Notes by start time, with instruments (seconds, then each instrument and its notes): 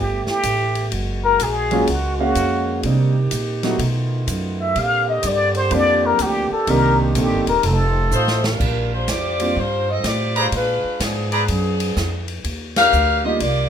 Already playing: upright bass G1, trombone section A3 B3 G4
0.00 muted trumpet G4
0.27 muted trumpet G4, muted upright bass stroke, snare
0.43 upright bass A1, hi-hat pedal, ride
0.75 ride
0.92 upright bass F#1, trombone section G#3 A#3 F#4, ride
1.24 muted trumpet A#4
1.40 upright bass A#1, muted trumpet G#4, hi-hat pedal, ride
1.71 grand piano F#3 G#3 A#3 C#4 F4, ride
1.87 upright bass C#2, muted trumpet F#4, ride
2.19 grand piano G#3 A#3 C#4 F#4 F5, muted trumpet F#4
2.35 upright bass F2, hi-hat pedal, ride
2.83 upright bass C3, trombone section D#3 C4 G4, grand piano G3 A#3 C4 D4 D#4, ride
3.31 upright bass A#2, hi-hat pedal, ride
3.63 grand piano F#3 A3 B3 D#4 F#4, snare, ride
3.79 upright bass B2, trombone section A3 B3 F4, ride
4.27 upright bass F#2, hi-hat pedal, ride
4.61 muted trumpet E5
4.75 upright bass A#2, trombone section D3 A#3 C4 G4, muted trumpet F5, ride
5.09 muted trumpet D#5
5.23 upright bass G2, muted trumpet D5, hi-hat pedal, ride
5.55 muted trumpet C5, ride
5.71 upright bass F2, grand piano F3 A#3 C4 D4 G4, ride
5.75 muted trumpet D5
6.06 muted trumpet A#4
6.19 upright bass D2, muted trumpet G4, hi-hat pedal, ride
6.51 muted trumpet A4, muted upright bass stroke
6.67 upright bass C2, grand piano D#3 A#3 C4 D4 G4, trombone section D#3 C4, muted trumpet A#4, ride
7.01 muted trumpet D4
7.15 upright bass A#1, grand piano D#3 A#3 C4 D4 A4, muted trumpet G4, hi-hat pedal, ride
7.32 upright bass G1
7.47 upright bass D#1, muted trumpet A#4, ride
7.63 upright bass F1, trombone section A3 F4, muted trumpet A4, ride
8.11 upright bass A1, saxophone section A3 D#4 F4 C5, hi-hat pedal
8.28 snare
8.44 saxophone section G3 D4 F4 A#4, snare
8.60 upright bass A#1, kick, crash
8.93 saxophone section G3 D4 F4 C5
9.08 upright bass F2, saxophone section C4 F4 G4 D5, snare, hi-hat pedal, ride
9.40 grand piano G3 A#3 C4 D4 F4, ride
9.56 upright bass G2, saxophone section G3 D4 F4 C5
9.90 saxophone section C4 F4 A4 D#5
10.04 upright bass A2, saxophone section C4 F4 G4 D5, snare, hi-hat pedal, ride
10.36 saxophone section G3 D4 F4 C5, trumpet section G#4 B4 D5 A#5, ride
10.52 upright bass A#2, saxophone section G#3 D4 F4 B4, ride
10.84 muted upright bass stroke
11.00 upright bass G#2, saxophone section B3 G#4, snare, hi-hat pedal, ride
11.04 saxophone section F3 D4
11.32 saxophone section F3 B3 D4 G#4, trumpet section G#4 B4 D5 A#5, ride
11.48 upright bass F#2, ride
11.80 ride
11.96 upright bass F2, snare, hi-hat pedal
12.28 ride
12.44 upright bass D#2, ride
12.76 saxophone section D4 G4 A#4 F5, snare, ride
12.93 upright bass D2, hi-hat pedal
13.24 grand piano G3 A#3 D4 D#4 F4, saxophone section A#3 F4 G4 D#5
13.40 upright bass C2, saxophone section A#3 F4 G4 D5, ride